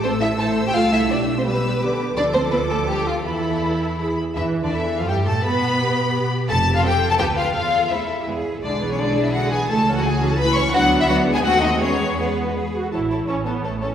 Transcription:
<<
  \new Staff \with { instrumentName = "Violin section" } { \time 3/4 \key a \minor \tempo 4 = 169 e'''2.~ | e'''4 e'''4 d'''4 | d'''2. | b''2 b''8 r8 |
e''8. d''16 e''8. f''16 g''8 a''8 | b''2~ b''8 r8 | a''8. f''16 g''8. a''16 g''8 f''8 | f''4 e''4 r4 |
\key a \major d''8. cis''16 d''8. e''16 fis''8 gis''8 | a''8. fis''16 gis''8. a''16 b''8 cis'''8 | fis''8. e''16 fis''8. gis''16 fis''8 dis''8 | cis''4 b'4. r8 |
a''8 a''8 a''8 a''8 a''8 a''8 | }
  \new Staff \with { instrumentName = "Violin section" } { \time 3/4 \key a \minor c''8 e''8 a''8. g''16 f''8 e''8 | d''8. c''16 b'4. r8 | d''8 c''8 b'8 a'8 g'8 f'8 | e'2~ e'8 r8 |
e'8. d'16 e'8. f'16 g'8 a'8 | b'2~ b'8 r8 | a'8. f'16 g'8. a'16 g'8 f'8 | f'4 e'4 r4 |
\key a \major d'8. cis'16 d'8. e'16 fis'8 gis'8 | a'8. fis'16 gis'8. a'16 b'8 cis''8 | fis'8. e'16 fis'8. gis'16 fis'8 dis'8 | cis'4 b4. r8 |
<a' cis''>8 <a' cis''>8 <a' cis''>8 <a' cis''>8 <a' cis''>8 <a' cis''>8 | }
  \new Staff \with { instrumentName = "Cello section" } { \time 3/4 \key a \minor c'8 e'8 a'8. g'16 f'8 e'8 | d'8. c'16 b4. r8 | d'8 c'8 b8 a8 g8 f8 | e2~ e8 r8 |
r4 a'2 | b'4 g'2~ | g'4 a'4 b'4 | a'4 a'8. g'16 gis'8. a'16 |
\key a \major gis'2. | a'4 fis'4 e'4 | d'2 fis'4 | gis'4 gis'8. fis'16 gis'8. a'16 |
e2. | }
  \new Staff \with { instrumentName = "Viola section" } { \time 3/4 \key a \minor << { a'4 c''4 a'4 | g'4 g'4 g'4 | a'2. | a'2 gis'8 r8 |
e8. d16 e8. f16 g8 a8 | b2~ b8 r8 | r4 c'4 b4 | r4 c'4 b4 |
\key a \major gis8 b8 gis8 b8 gis8 b8 | a8 cis'8 a8 cis'8 a8 cis'8 | b4 b4 bis4 | b4 b4 gis'8 fis'8 |
e'4 cis'8 b8 a8 cis'8 | } \\ { a2.~ | a4 g8 g8 d4 | f2. | e2 e8 r8 |
r2. | r2. | r4 f4 f4 | r4 a4 gis4 |
d8 e8 d8 e8 d8 e8 | a8 e8 a8 e8 a8 e8 | fis4 fis8 gis8 a4 | gis4 gis4 r4 |
r2. | } >> }
  \new Staff \with { instrumentName = "Double bass section" } { \clef bass \time 3/4 \key a \minor a,,2 c,4 | b,,2. | d,2. | e,2~ e,8 r8 |
e,8. d,16 e,8. f,16 g,8 a,8 | b,2~ b,8 r8 | f,,4 r4 d,4 | e,4 r4 e,4 |
\key a \major b,,2. | cis,2. | d,2 dis,4 | e,2~ e,8 r8 |
a,,4 a,,4 a,,4 | }
>>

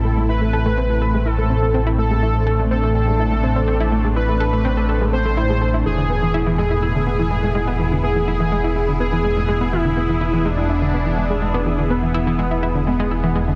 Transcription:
<<
  \new Staff \with { instrumentName = "Analog synth lead" } { \time 4/4 \key a \minor \tempo 4 = 124 a'8 b'2 a'4. | a'4. a'2~ a'8~ | a'8 b'2 c''4. | gis'4. gis'2~ gis'8~ |
gis'8 gis'2 gis'4. | e'4. d'2~ d'8~ | d'8 b2 b4. | }
  \new Staff \with { instrumentName = "Analog synth pad" } { \time 4/4 \key a \minor << { e'1 | d'1~ | d'1 | e'1~ |
e'1~ | e'1~ | e'1 | } \\ { <a c'>1~ | <a c'>1~ | <a c'>1 | <b gis'>1~ |
<b gis'>1~ | <b gis'>1~ | <b gis'>1 | } >> }
  \new Staff \with { instrumentName = "Synth arpeggio sound" } { \time 4/4 \key a \minor a16 gis16 e'16 a16 a'16 a16 c'16 a'16 a'16 gis16 e'16 a16 c'16 c'16 c'16 e'16 | a16 gis16 e'16 a16 a'16 a16 c'16 a'16 a'16 gis16 e'16 a16 c'16 c'16 c'16 e'16 | a16 gis16 e'16 a16 a'16 a16 c'16 a'16 a'16 gis16 c'16 a16 e'16 gis16 a'16 e'16 | e16 d16 b16 e16 e'16 e16 gis16 e'16 e'16 d16 b16 e16 gis16 gis16 gis16 b16 |
e16 d16 b16 e16 e'16 e16 gis16 e'16 e'16 d16 b16 e16 gis16 gis16 gis16 b16 | e16 d16 b16 e16 e'16 e16 gis16 e'16 e'16 d16 b16 e16 gis16 gis16 gis16 b16 | e16 d16 b16 e16 e'16 e16 gis16 e'16 e'16 d16 gis16 gis16 e'16 e16 gis16 d16 | }
  \new Staff \with { instrumentName = "Synth drone" } { \clef bass \time 4/4 \key a \minor <a, a>1~ | <a, a>1~ | <a, a>1~ | <a, a>1~ |
<a, a>1~ | <a, a>1~ | <a, a>1 | }
  \new Staff \with { instrumentName = "Detuned saw bass" } { \clef bass \time 4/4 \key a \minor a,,1~ | a,,1~ | a,,1 | e,,1~ |
e,,1~ | e,,1~ | e,,1 | }
>>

